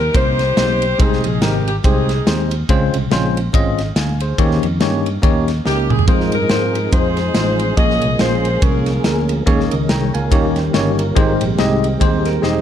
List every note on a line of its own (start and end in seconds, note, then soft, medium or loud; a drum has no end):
0.00 0.14 D#4 medium
0.00 0.14 G4 medium
0.00 0.11 A#4 loud
0.14 0.51 C2 loud
0.14 0.41 A#3 medium
0.14 0.41 C4 medium
0.14 0.42 D#4 medium
0.14 0.96 D#4 loud
0.14 0.42 G4 medium
0.14 0.96 G4 loud
0.14 1.00 C5 loud
0.14 0.42 C5 loud
0.14 kick loud
0.14 ride bell medium
0.39 snare soft
0.39 ride bell medium
0.56 0.93 B1 medium
0.56 0.84 A#3 medium
0.56 0.84 C4 medium
0.56 0.84 D#4 medium
0.56 0.84 G4 medium
0.56 0.84 C5 medium
0.56 snare loud
0.56 ride bell medium
0.82 ride bell medium
0.98 1.21 C2 loud
0.98 1.62 C3 medium
0.98 1.26 G#3 medium
0.98 1.26 C4 medium
0.98 1.26 D#4 medium
0.98 1.81 D#4 medium
0.98 1.26 G4 medium
0.98 1.24 G#4 loud
0.98 1.26 C5 loud
0.98 kick loud
0.98 ride bell medium
1.13 snare soft
1.24 1.39 A#1 loud
1.24 1.41 G#4 loud
1.24 ride bell medium
1.41 1.78 G#1 loud
1.41 1.68 G#3 medium
1.41 1.68 C4 medium
1.41 1.69 D#4 medium
1.41 1.69 G4 medium
1.41 1.65 G4 medium
1.41 1.69 A#4 medium
1.41 snare loud
1.41 ride bell medium
1.67 1.75 G4 medium
1.67 ride bell medium
1.84 2.20 C2 loud
1.84 2.11 G#3 medium
1.84 2.11 C4 medium
1.84 2.11 D#4 medium
1.84 2.66 D#4 medium
1.84 2.11 G4 medium
1.84 2.48 G#4 loud
1.84 2.11 C5 medium
1.84 kick loud
1.84 ride bell medium
2.09 snare soft
2.09 ride bell medium
2.26 2.63 D#2 medium
2.26 2.53 G#3 medium
2.26 2.53 C4 medium
2.26 2.54 D#4 medium
2.26 2.54 G4 medium
2.26 2.54 C5 medium
2.26 snare loud
2.26 ride bell medium
2.51 ride bell medium
2.69 2.90 C#2 loud
2.69 3.32 C#3 medium
2.69 2.96 G#3 loud
2.69 2.96 C4 loud
2.69 2.96 C#4 medium
2.69 2.96 F4 loud
2.69 2.96 C5 loud
2.69 kick loud
2.69 ride bell medium
2.94 3.09 C2 medium
2.94 ride bell medium
3.11 3.47 A#1 loud
3.11 3.38 G#3 medium
3.11 3.38 C4 medium
3.11 3.38 C#4 medium
3.11 3.38 F4 medium
3.11 3.39 C5 loud
3.11 snare loud
3.11 ride bell medium
3.37 ride bell medium
3.53 3.90 G#1 loud
3.53 3.80 G#3 loud
3.53 3.80 C4 medium
3.53 3.81 C#4 medium
3.53 3.81 F4 medium
3.53 3.81 D#5 loud
3.53 kick loud
3.53 ride bell medium
3.79 snare soft
3.79 ride bell medium
3.96 4.32 D2 loud
3.96 4.20 F5 medium
3.96 4.20 G#5 medium
3.96 snare loud
3.96 ride bell medium
4.20 4.62 G#4 medium
4.20 4.61 C5 medium
4.20 ride bell medium
4.38 4.59 D#2 loud
4.38 5.02 D#3 medium
4.38 4.65 A#3 loud
4.38 4.65 C#4 medium
4.38 4.65 D#4 medium
4.38 4.66 G4 loud
4.38 4.66 C#5 loud
4.38 kick loud
4.38 ride bell medium
4.51 snare soft
4.63 4.78 F2 loud
4.63 ride bell medium
4.80 5.17 G2 loud
4.80 5.07 A#3 medium
4.80 5.07 C#4 medium
4.80 5.08 D#4 medium
4.80 5.08 G4 medium
4.80 5.08 C#5 loud
4.80 snare loud
4.80 ride bell medium
5.06 ride bell medium
5.22 5.59 D#2 loud
5.22 5.49 A#3 medium
5.22 5.50 C#4 medium
5.22 5.50 D#4 medium
5.22 5.50 G4 medium
5.22 5.50 C#5 loud
5.22 kick loud
5.22 ride bell medium
5.48 snare soft
5.48 ride bell medium
5.65 6.02 C#2 loud
5.65 5.92 A#3 medium
5.65 5.92 C#4 medium
5.65 5.92 D#4 medium
5.65 5.93 G4 medium
5.65 5.89 G4 medium
5.65 5.93 A#4 medium
5.65 snare medium
5.90 6.08 G#4 medium
5.90 mid tom loud
5.99 floor tom loud
6.07 6.29 F2 loud
6.07 7.74 F3 medium
6.07 6.34 G#3 medium
6.07 7.74 G#3 medium
6.07 6.34 C4 medium
6.07 7.74 C4 medium
6.07 6.32 D#4 medium
6.07 6.35 D#4 medium
6.07 7.74 D#4 medium
6.07 6.35 F4 medium
6.07 6.14 G4 medium
6.07 6.33 A#4 loud
6.07 6.35 C5 medium
6.07 kick loud
6.07 ride bell medium
6.14 7.76 G#4 medium
6.21 snare soft
6.32 6.48 G2 medium
6.32 6.92 D#4 medium
6.32 6.89 A#4 loud
6.32 ride bell medium
6.49 6.86 G#2 medium
6.49 6.77 G#3 medium
6.49 6.77 C4 medium
6.49 6.77 D#4 medium
6.49 6.77 F4 medium
6.49 6.77 C5 medium
6.49 snare loud
6.49 ride bell medium
6.75 ride bell medium
6.92 7.29 F2 loud
6.92 7.19 G#3 medium
6.92 7.19 C4 medium
6.92 7.19 D#4 medium
6.92 7.74 D#4 medium
6.92 7.19 F4 medium
6.92 7.74 G#4 medium
6.92 7.77 C5 loud
6.92 7.19 C5 medium
6.92 kick loud
6.92 ride bell medium
7.17 snare soft
7.17 ride bell medium
7.35 7.71 A1 medium
7.35 7.62 G#3 medium
7.35 7.62 C4 medium
7.35 7.62 D#4 medium
7.35 7.62 F4 medium
7.35 7.62 C5 medium
7.35 snare loud
7.35 ride bell medium
7.59 ride bell medium
7.77 7.98 A#1 loud
7.77 8.41 A#2 medium
7.77 9.43 F3 medium
7.77 9.43 G#3 medium
7.77 8.04 A#3 medium
7.77 9.43 A#3 medium
7.77 9.43 C#4 medium
7.77 8.04 C#4 medium
7.77 8.04 F4 medium
7.77 9.43 G#4 medium
7.77 8.20 G#4 medium
7.77 8.04 G#4 medium
7.77 8.05 C#5 medium
7.77 8.17 D#5 loud
7.77 kick loud
7.77 ride bell medium
7.90 snare soft
8.02 8.17 C2 medium
8.02 ride bell medium
8.19 8.56 A#1 loud
8.19 8.46 A#3 medium
8.19 8.46 C#4 medium
8.19 8.47 F4 medium
8.19 8.62 F4 medium
8.19 8.47 G#4 medium
8.19 9.01 G#4 medium
8.19 8.62 C5 loud
8.19 8.47 C5 medium
8.19 snare loud
8.19 ride bell medium
8.45 ride bell medium
8.62 8.98 C2 loud
8.62 8.89 A#3 medium
8.62 8.89 C#4 medium
8.62 9.44 C#4 medium
8.62 8.89 F4 medium
8.62 9.44 F4 medium
8.62 8.89 G#4 medium
8.62 9.30 A#4 loud
8.62 8.89 C#5 medium
8.62 kick loud
8.62 ride bell medium
8.86 snare soft
8.86 ride bell medium
9.04 9.41 D2 medium
9.04 9.31 A#3 medium
9.04 9.31 C#4 medium
9.04 9.31 F4 medium
9.04 9.32 G#4 medium
9.04 9.32 A#4 medium
9.04 snare loud
9.04 ride bell medium
9.29 ride bell medium
9.46 9.68 D#2 loud
9.46 10.10 D#3 medium
9.46 10.30 D#3 medium
9.46 10.30 G#3 medium
9.46 9.73 A#3 loud
9.46 10.30 A#3 medium
9.46 9.73 C#4 medium
9.46 10.30 C#4 medium
9.46 9.74 D#4 medium
9.46 9.74 G#4 medium
9.46 9.71 G#4 loud
9.46 9.74 C#5 loud
9.46 kick loud
9.46 ride bell medium
9.60 snare soft
9.71 9.87 C#2 medium
9.71 9.89 A#4 medium
9.71 9.89 D#5 medium
9.71 ride bell medium
9.89 10.11 C2 loud
9.89 10.13 G#4 medium
9.89 10.13 C#5 medium
9.89 10.13 G5 medium
9.89 10.13 A#5 medium
9.89 snare loud
9.89 ride bell medium
10.14 10.30 C#2 medium
10.14 10.55 F4 medium
10.14 10.55 A#4 medium
10.14 10.55 F5 medium
10.14 10.54 G#5 medium
10.14 ride bell medium
10.31 10.68 D#2 loud
10.31 11.15 D#3 medium
10.31 10.95 D#3 medium
10.31 11.15 G3 medium
10.31 10.58 A#3 loud
10.31 11.15 A#3 medium
10.31 10.58 C#4 medium
10.31 11.15 C#4 medium
10.31 10.58 D#4 medium
10.31 10.56 G4 medium
10.31 10.59 G4 medium
10.31 10.59 C#5 loud
10.31 kick loud
10.31 ride bell medium
10.56 10.73 G4 medium
10.56 10.73 C5 medium
10.56 snare soft
10.56 ride bell medium
10.73 11.10 G1 medium
10.73 11.00 A#3 medium
10.73 11.01 C#4 medium
10.73 11.01 D#4 medium
10.73 11.01 G4 medium
10.73 10.98 G4 medium
10.73 10.97 C#5 medium
10.73 11.01 C#5 loud
10.73 snare loud
10.73 ride bell medium
10.99 11.39 F4 medium
10.99 11.39 A#4 medium
10.99 ride bell medium
11.15 11.38 G#1 loud
11.15 11.79 G#2 medium
11.15 12.61 D#3 medium
11.15 12.61 G3 medium
11.15 11.43 G#3 loud
11.15 12.61 G#3 medium
11.15 11.43 C4 medium
11.15 12.61 C4 medium
11.15 11.43 D#4 medium
11.15 11.22 F#4 medium
11.15 11.43 G4 medium
11.15 11.43 C5 loud
11.15 kick loud
11.15 ride bell medium
11.22 12.61 G4 medium
11.41 11.57 A#1 medium
11.41 ride bell medium
11.58 11.95 C2 medium
11.58 11.85 G#3 loud
11.58 11.85 C4 medium
11.58 11.86 D#4 medium
11.58 11.86 G4 medium
11.58 11.86 D#5 loud
11.58 snare loud
11.58 ride bell medium
11.84 ride bell medium
12.00 12.37 D#2 loud
12.00 12.27 G#3 loud
12.00 12.28 C4 medium
12.00 12.25 C4 medium
12.00 12.28 D#4 medium
12.00 12.28 G4 medium
12.00 12.25 G#4 medium
12.00 12.28 C5 loud
12.00 kick loud
12.00 ride bell medium
12.25 12.43 A#4 medium
12.25 snare soft
12.25 ride bell medium
12.42 12.61 E1 medium
12.42 12.61 G#3 medium
12.42 12.61 C4 medium
12.42 12.61 D#4 medium
12.42 12.61 G4 medium
12.42 12.61 C5 medium
12.42 12.61 D#5 medium
12.42 snare medium